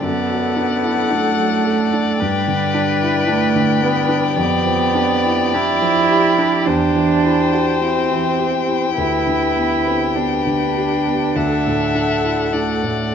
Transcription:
0.02 F#2 B3 A4 D5 F#5
0.30 F#3
0.56 D4
0.83 E4
1.11 A3 D4
1.38 F#3
1.65 A4
1.93 D4
2.20 G2 G3 B4 G5
2.48 D3
2.74 D4
3.02 E4
3.28 A3 D4
3.56 D3
3.82 B3 B4
4.08 D4
4.35 F2 B3 G4 D5
4.66 F3
4.95 D4
5.25 E4
5.54 D4 E4
5.82 F3
6.10 G4
6.39 D4
6.65 E2 D4 C5 G5
6.96 E3
7.24 E4
7.53 F#4
7.81 C4 E4
8.11 E3
8.39 G4
8.68 E4
8.95 D2 E4 G4 B4
9.27 D3
9.56 B3
9.86 C4
10.14 B3 D4 B4
10.47 D3
10.78 G4
11.06 B3
11.35 D2 A4 E5 F#5
11.67 A2
11.95 D4
12.24 E4
12.53 A3 D4 D5
12.83 A2

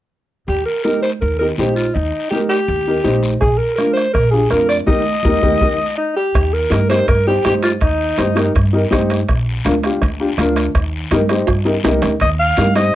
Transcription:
0.47 D#2 G4, high conga, long guiro
0.66 A#4
0.84 D#4 G4 A#4, high conga, short guiro
1.03 C5, short guiro
1.21 D#2 A#4, high conga, long guiro
1.39 D#4 G4 A#4
1.58 A#1 D#4 G4 C5, high conga, short guiro
1.76 F4, short guiro
1.94 D#2 D#4, long guiro
2.31 D#4 G4 A#4, high conga, short guiro
2.49 G4, short guiro
2.68 D#2, long guiro
2.88 D#4 G4 A#4
3.04 A#1 D#4 G4 C5, high conga, short guiro
3.23 short guiro
3.41 A#1 G#4, bombo low, bombo rim, long guiro
3.58 A#4
3.76 D4 F4 A#4, bombo rim, high conga, short guiro
3.93 C5, short guiro
3.97 bombo rim
4.14 A#1 A#4, bombo low, bombo rim, long guiro
4.31 D4 F4 G4 G#4
4.50 F2 D4 F4 A#4, bombo rim, high conga, short guiro
4.69 D5, bombo rim, short guiro
4.86 D#2 D#4 G4 A#4 D#5, bombo low, high conga, long guiro
5.23 D#2 D#4 G4 A#4, bombo low, high conga, long guiro
5.42 D#2 D#4 G4 A#4, bombo low, high conga, long guiro
5.61 D#2 D#4 G4 A#4, bombo low, high conga, long guiro
5.98 D#4
6.16 G4
6.34 D#2, bombo low, bombo rim, high conga, high timbale, long guiro
6.53 A#4
6.70 G2 D#4 G4 A#4, bombo rim, high conga, high timbale, short guiro
6.89 D#4 G4 A#4 C5, bombo rim, high timbale, short guiro
7.08 G2 A#4, bombo low, bombo rim, high conga, high timbale, long guiro
7.27 D#4 G4 C5
7.45 G2 D#4 G4 C5, bombo rim, high conga, high timbale, short guiro
7.63 F4, bombo rim, high timbale, short guiro
7.81 D#2 D#4, bombo low, bombo rim, high conga, high timbale, long guiro
8.18 G2 D#4 G4 C5, bombo rim, high conga, high timbale, short guiro
8.35 D#4 G4 A#4, bombo rim, high timbale, short guiro
8.55 G2, bombo low, bombo rim, high conga, high timbale, long guiro
8.73 D#4 G4 A#4
8.91 G2 D#4 G4 C5, bombo low, bombo rim, high conga, high timbale, short guiro
9.10 bombo rim, high timbale, short guiro
9.29 A#1, bombo low, bombo rim, high timbale, long guiro
9.65 D2 D4 F4 A#4, bombo rim, high conga, high timbale, short guiro
9.83 D4 F4 G4, bombo rim, high timbale, short guiro
10.01 D2, bombo low, bombo rim, high conga, high timbale, long guiro
10.20 D4 F4 G4
10.38 D2 D4 F4 A#4, bombo rim, high conga, high timbale, short guiro
10.56 bombo rim, high timbale, short guiro
10.75 D#2, bombo low, bombo rim, high conga, high timbale, long guiro
11.11 G2 D#4 G4 A#4, bombo rim, high conga, high timbale, short guiro
11.29 D#4 G4 C5, bombo rim, high timbale, short guiro
11.47 G2, bombo low, bombo rim, high conga, high timbale, long guiro
11.65 D#4 G4 A#4, low timbale
11.83 C2 D#4 G4 A#4, bombo rim, high conga, low timbale, short guiro
12.02 D2, bombo rim, low timbale, short guiro
12.20 D#2 D#5, bombo low, bombo rim, high conga, high timbale, long guiro
12.39 F5
12.57 G2 D#4 G4 A#4, bombo rim, high conga, high timbale, short guiro
12.75 D#4 G4 C5 D#5, bombo rim, high timbale, short guiro

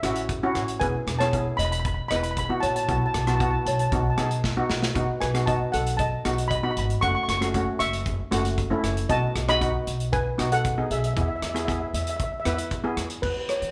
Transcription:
0.03 A1 C#4 E4 F#4 E5, cross-stick, closed hi-hat
0.10 E5
0.16 closed hi-hat
0.29 kick, closed hi-hat
0.43 C#4 E4 F#4
0.55 A1, cross-stick, closed hi-hat
0.68 closed hi-hat
0.80 E1 B3 E4 G#4 B4 G#5, kick, closed hi-hat
1.07 E1, cross-stick, closed hi-hat
1.19 B3 E4 G#4 C#5 A5, cross-stick, closed hi-hat
1.33 B3 E4 G#4, kick, closed hi-hat
1.57 E1 D#5 B5, closed hi-hat
1.65 B5
1.72 B5, closed hi-hat
1.80 B5
1.85 B5, kick, closed hi-hat
1.94 B5
2.08 E1 B3 E4 B4 D#5 B5, cross-stick, closed hi-hat
2.16 B5
2.23 B5, closed hi-hat
2.31 B5
2.37 B5, kick, closed hi-hat
2.45 B3 B5
2.50 E4 F#4
2.60 A#1 C#5 A5, closed hi-hat
2.68 A5
2.76 A5, closed hi-hat
2.83 A5
2.88 B1 B3 E4 F#4 A5, kick, closed hi-hat
2.98 A5
3.06 A5
3.14 B1 A5, cross-stick, closed hi-hat
3.21 A5
3.27 B3 E4 F#4 A5, cross-stick, closed hi-hat
3.36 A5
3.40 B3 E4 F#4 A5, kick, closed hi-hat
3.51 A5
3.66 B1 C#5 A5, closed hi-hat
3.73 A5
3.79 A5, closed hi-hat
3.87 A5
3.92 B1 B3 D#4 F#4 A5, kick, closed hi-hat
4.02 A5
4.10 A5
4.17 B1 B3 D#4 G#4 A5, cross-stick, closed hi-hat
4.24 A5
4.31 closed hi-hat
4.44 kick, snare
4.57 B3 D#4 F#4
4.70 B1, snare
4.82 snare
4.95 B1 B3 D#4 F#4, kick, closed hi-hat
5.21 B1 B4 G#5, cross-stick, closed hi-hat
5.34 B3 D#4 F#4, cross-stick, closed hi-hat
5.46 B3 D#4 F#4 D#5 A5, kick, closed hi-hat
5.72 B1 A4 F#5, closed hi-hat
5.87 closed hi-hat
5.97 D#5 A5, kick, closed hi-hat
6.25 B1 B3 D#4 F#4, cross-stick, closed hi-hat
6.38 closed hi-hat
6.48 D#5 B5, kick, closed hi-hat
6.55 B5
6.63 B3 D#4 F#4 B5
6.71 B5
6.77 G#1 B5, closed hi-hat
6.86 B5
6.90 closed hi-hat
7.01 F#1 A3 C#4 F#4 F#5 C#6, kick, closed hi-hat
7.08 C#6
7.15 C#6
7.23 C#6
7.28 F#1 C#6, cross-stick, closed hi-hat
7.37 A3 C#4 F#4 C#6
7.42 cross-stick, closed hi-hat
7.54 A3 C#4 F#4, kick, closed hi-hat
7.79 F#1 E5 C#6, closed hi-hat
7.93 closed hi-hat
8.06 kick, closed hi-hat
8.31 F#1 A3 C#4 F#4, cross-stick, closed hi-hat
8.45 closed hi-hat
8.58 kick, closed hi-hat
8.70 A3 C#4 E4
8.83 F#1, cross-stick, closed hi-hat
8.97 closed hi-hat
9.09 B1 B3 D#4 F#4 D#5 A5, kick, closed hi-hat
9.35 B1, cross-stick, closed hi-hat
9.48 B3 D#4 F#4 D#5 B5, cross-stick, closed hi-hat
9.61 B3 D#4 F#4, kick, closed hi-hat
9.87 B1, closed hi-hat
10.00 closed hi-hat
10.13 B4 G#5, kick, closed hi-hat
10.38 B1 B3 D#4 F#4, cross-stick, closed hi-hat
10.52 A4 F#5, closed hi-hat
10.65 kick, closed hi-hat
10.78 B3 D#4 G#4
10.90 B1 G#4 E5, closed hi-hat
10.99 E5
11.04 E5, closed hi-hat
11.14 E2 B3 E4 G#4 E5, kick, closed hi-hat
11.21 E5
11.28 E5
11.36 E5
11.42 E2 E5, cross-stick, closed hi-hat
11.49 E5
11.54 B3 E4 G#4 E5, cross-stick, closed hi-hat
11.65 B3 E4 G#4 E5, kick, closed hi-hat
11.72 E5
11.80 E5
11.87 E5
11.94 E2 E5, closed hi-hat
12.03 E5
12.07 E5, closed hi-hat
12.17 E5, kick, closed hi-hat
12.24 E5
12.32 E5
12.40 E5
12.45 E2 B3 E4 B4 E5, cross-stick, closed hi-hat
12.54 E5
12.58 closed hi-hat
12.71 kick, closed hi-hat
12.84 B3 E4 G#4
12.97 E2, cross-stick, closed hi-hat
13.10 closed hi-hat
13.22 E2 B4, kick, crash
13.49 C#5, cross-stick, closed hi-hat
13.62 E3, closed hi-hat

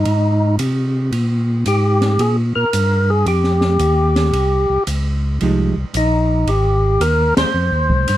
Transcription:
Already playing: D#4
0.05 G#2, ride
0.59 C3, hi-hat pedal, ride
1.12 A#2, ride
1.66 G#2 G4, hi-hat pedal, ride
2.02 snare, ride
2.19 A#2 G#4, ride
2.55 A#2 A#4
2.73 G2, hi-hat pedal, ride
3.10 G#4
3.26 F2 G4, ride
3.44 snare
3.61 snare
3.79 D#2, hi-hat pedal, ride
4.16 snare, ride
4.33 C2, ride
4.70 C2
4.87 C#2, hi-hat pedal, ride
5.41 C2 F3 G#3 D#4 G4, ride
5.77 C2
5.94 A#1 D#4, hi-hat pedal, ride
6.47 G#1 G4, ride
7.00 D#2 A#4, hi-hat pedal, ride
7.37 D#2 C5, snare, ride
7.54 F2
7.72 D#2
7.90 C2, kick
8.08 G2, hi-hat pedal, ride

